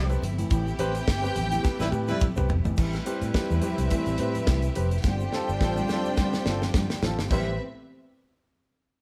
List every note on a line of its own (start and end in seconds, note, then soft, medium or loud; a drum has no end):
0.00 0.15 C2 medium
0.00 2.73 C3 medium
0.00 0.48 A3 medium
0.00 0.48 B3 medium
0.00 2.73 E4 medium
0.00 2.73 G4 medium
0.00 0.19 A4 loud
0.00 0.19 A5 loud
0.10 0.22 C4 medium
0.10 0.22 G4 medium
0.10 0.22 B4 medium
0.10 closed hi-hat soft
0.10 shaker medium
0.22 0.42 G1 loud
0.22 closed hi-hat medium
0.22 high conga medium
0.38 0.50 A2 medium
0.38 0.49 E3 medium
0.38 closed hi-hat soft
0.38 low conga medium
0.38 shaker medium
0.50 0.71 A1 loud
0.50 0.66 A2 medium
0.50 0.66 E3 medium
0.50 2.75 A3 medium
0.50 2.75 B3 medium
0.50 2.45 G4 loud
0.50 2.45 G5 loud
0.50 kick loud
0.50 closed hi-hat medium
0.50 low conga medium
0.50 shaker medium
0.67 shaker soft
0.79 0.99 A1 medium
0.79 0.94 C4 loud
0.79 0.94 G4 loud
0.79 0.93 B4 loud
0.79 closed hi-hat medium
0.79 high conga medium
0.79 shaker medium
0.95 1.00 G4 soft
0.95 1.00 B4 soft
0.95 closed hi-hat soft
0.95 shaker medium
1.08 1.28 G1 medium
1.08 kick loud
1.08 snare loud
1.08 muted conga soft
1.08 shaker medium
1.22 1.34 C4 medium
1.22 1.34 G4 medium
1.22 1.35 B4 medium
1.22 muted conga soft
1.22 shaker medium
1.36 1.56 A1 medium
1.36 closed hi-hat medium
1.36 high conga medium
1.51 1.63 A2 soft
1.51 1.63 E3 medium
1.51 closed hi-hat medium
1.51 low conga loud
1.51 shaker medium
1.63 1.78 G4 medium
1.63 1.79 B4 medium
1.63 kick loud
1.63 snare medium
1.63 shaker medium
1.78 1.89 A1 medium
1.78 1.91 A2 medium
1.78 1.91 E3 medium
1.78 1.88 G3 medium
1.78 1.88 E4 loud
1.78 1.88 B4 loud
1.78 snare medium
1.78 shaker medium
1.91 2.12 A2 loud
1.91 2.07 G4 medium
1.91 2.07 B4 medium
1.91 high tom medium
1.91 shaker medium
2.08 2.26 G3 medium
2.08 2.27 E4 medium
2.08 2.27 B4 loud
2.08 high tom medium
2.08 high conga medium
2.08 shaker medium
2.20 kick loud
2.20 mid tom medium
2.20 muted conga soft
2.20 high conga medium
2.20 shaker medium
2.36 2.45 C2 medium
2.36 2.48 C4 medium
2.36 2.48 G4 medium
2.36 2.49 B4 medium
2.36 mid tom medium
2.36 muted conga soft
2.36 shaker medium
2.49 2.60 F1 medium
2.49 floor tom loud
2.49 high conga medium
2.64 2.74 G1 medium
2.64 2.76 A2 medium
2.64 2.75 E3 medium
2.64 floor tom medium
2.64 low conga medium
2.64 shaker medium
2.77 2.98 A1 loud
2.77 2.92 A2 medium
2.77 5.02 C3 medium
2.77 2.92 E3 medium
2.77 4.72 G3 medium
2.77 5.02 A3 medium
2.77 5.00 C4 medium
2.77 5.02 E4 medium
2.77 4.72 E4 medium
2.77 7.27 G4 medium
2.77 5.00 B4 medium
2.77 5.02 B4 medium
2.77 4.72 B4 loud
2.77 5.00 E5 loud
2.77 kick loud
2.77 crash loud
2.77 shaker medium
2.93 2.99 G4 soft
2.93 2.99 B4 soft
2.93 snare soft
2.93 shaker soft
3.06 3.21 C4 medium
3.06 3.21 G4 medium
3.06 3.21 B4 loud
3.06 closed hi-hat medium
3.22 3.30 A2 loud
3.22 closed hi-hat soft
3.22 shaker medium
3.34 3.49 G4 medium
3.34 3.49 B4 medium
3.34 kick loud
3.34 snare loud
3.34 muted conga soft
3.34 shaker medium
3.50 3.59 E2 medium
3.50 3.61 A2 medium
3.50 3.62 E3 medium
3.50 shaker medium
3.62 3.77 G4 medium
3.62 3.78 B4 medium
3.62 closed hi-hat medium
3.62 high conga medium
3.62 shaker medium
3.78 3.87 C2 medium
3.78 closed hi-hat soft
3.78 low conga loud
3.78 shaker medium
3.91 4.06 A2 medium
3.91 4.06 E3 medium
3.91 kick loud
3.91 closed hi-hat medium
3.91 muted conga soft
3.91 shaker medium
4.06 4.15 A1 medium
4.06 closed hi-hat soft
4.06 shaker medium
4.18 4.39 A2 loud
4.18 4.34 C4 medium
4.18 4.34 G4 medium
4.18 4.34 B4 medium
4.18 closed hi-hat medium
4.35 4.40 G4 soft
4.35 4.40 B4 soft
4.35 closed hi-hat soft
4.35 high conga medium
4.35 shaker medium
4.47 4.67 C2 medium
4.47 4.63 A2 medium
4.47 4.62 E3 medium
4.47 kick loud
4.47 snare loud
4.47 high conga medium
4.47 shaker medium
4.62 closed hi-hat soft
4.62 muted conga soft
4.62 shaker medium
4.75 4.96 F1 medium
4.75 4.90 C4 medium
4.75 4.90 G4 medium
4.75 4.91 B4 medium
4.75 closed hi-hat medium
4.75 high conga medium
4.91 4.97 G4 soft
4.91 4.97 B4 soft
4.91 closed hi-hat soft
4.91 low conga medium
4.91 shaker medium
5.03 5.24 G1 loud
5.03 5.20 G2 medium
5.03 7.28 D3 medium
5.03 5.20 D3 medium
5.03 6.98 G3 medium
5.03 7.28 G3 medium
5.03 7.28 C4 medium
5.03 7.26 D4 loud
5.03 7.28 F4 medium
5.03 6.98 F4 medium
5.03 7.27 C5 medium
5.03 6.98 D5 medium
5.03 7.27 G5 loud
5.03 kick loud
5.03 snare medium
5.03 shaker medium
5.20 5.26 F4 soft
5.20 5.26 A4 soft
5.20 muted conga soft
5.20 shaker medium
5.33 5.48 C4 medium
5.33 5.48 F4 medium
5.33 5.48 A4 medium
5.33 snare medium
5.49 5.58 G1 loud
5.49 shaker medium
5.61 5.80 A1 medium
5.61 5.76 F4 medium
5.61 5.76 A4 medium
5.61 kick loud
5.61 snare medium
5.61 shaker medium
5.77 5.89 G2 medium
5.77 5.89 D3 medium
5.77 muted conga soft
5.77 shaker medium
5.88 snare medium
5.88 high conga medium
5.88 shaker medium
5.93 6.05 F4 medium
5.93 6.06 A4 medium
6.05 low conga medium
6.05 shaker medium
6.17 6.33 G2 medium
6.17 6.34 D3 medium
6.17 kick loud
6.17 snare medium
6.17 muted conga soft
6.17 shaker medium
6.33 snare medium
6.33 muted conga soft
6.33 shaker medium
6.46 6.66 G1 medium
6.46 6.62 C4 medium
6.46 6.62 F4 medium
6.46 6.62 A4 medium
6.46 snare loud
6.62 6.68 F4 soft
6.62 6.68 A4 soft
6.62 snare medium
6.62 high conga medium
6.62 shaker medium
6.74 6.85 G2 loud
6.74 6.90 G2 medium
6.74 6.90 D3 medium
6.74 kick loud
6.74 snare loud
6.74 muted conga soft
6.74 high conga medium
6.74 shaker medium
6.90 snare medium
6.90 muted conga soft
6.90 shaker medium
7.02 7.13 A1 medium
7.02 7.18 C4 medium
7.02 7.18 F4 medium
7.02 7.18 A4 medium
7.02 snare loud
7.02 high conga medium
7.18 7.27 G1 medium
7.18 7.24 F4 soft
7.18 7.24 A4 soft
7.18 snare medium
7.18 low conga medium
7.18 shaker medium
7.30 7.57 A1 loud
7.30 7.57 C3 medium
7.30 7.50 G3 medium
7.30 7.57 A3 medium
7.30 7.57 B3 medium
7.30 7.57 C4 medium
7.30 7.53 C4 medium
7.30 7.57 E4 medium
7.30 7.50 E4 medium
7.30 7.57 G4 medium
7.30 7.53 G4 medium
7.30 7.57 B4 medium
7.30 7.53 B4 loud
7.30 7.50 C5 medium
7.30 7.57 E5 loud
7.30 kick loud
7.30 crash medium
7.30 high conga medium
7.30 shaker medium